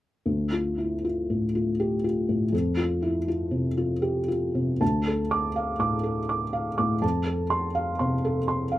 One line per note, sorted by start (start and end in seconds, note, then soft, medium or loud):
0.26 2.49 D2 soft
0.52 0.93 F4 soft
0.78 1.03 E4 soft
1.05 1.45 F4 soft
1.30 1.70 A2 soft
1.55 1.94 F4 soft
1.80 2.04 G4 soft
2.04 2.43 F4 soft
2.29 2.53 A2 soft
2.52 4.77 F2 soft
2.77 3.16 F4 soft
3.02 3.27 E4 soft
3.28 3.67 F4 soft
3.51 3.91 C3 soft
3.77 4.18 F4 soft
4.02 4.28 G4 soft
4.28 4.71 F4 soft
4.55 4.81 C3 soft
4.81 6.99 D2 soft
4.81 5.21 A5 soft
5.07 5.47 A4 soft
5.31 5.71 D6 soft
5.56 5.95 F5 soft
5.79 6.19 A2 soft
5.79 6.19 D6 soft
6.03 6.43 A4 soft
6.29 6.69 D6 soft
6.53 6.93 F5 soft
6.78 7.03 A2 soft
6.78 7.03 D6 soft
7.02 8.79 F2 soft
7.02 7.41 A5 soft
7.26 7.65 A4 soft
7.50 7.89 C6 medium
7.75 8.14 F5 soft
7.99 8.38 C3 soft
7.99 8.38 C6 soft
8.25 8.63 A4 soft
8.48 8.79 C6 soft
8.72 8.79 F5 soft